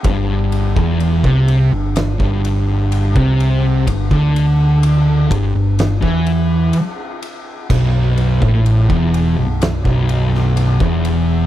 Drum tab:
CC |----------------|----------------|x---------------|
RD |x-x-x-x-x-x-x-x-|x-x-x-x-x-x-x-x-|--x-x-x-x-x-x-x-|
SD |--------o-------|--------o-------|--------o--o----|
BD |o--o-o---o---o--|oo----o--o------|o--o-o---o---o--|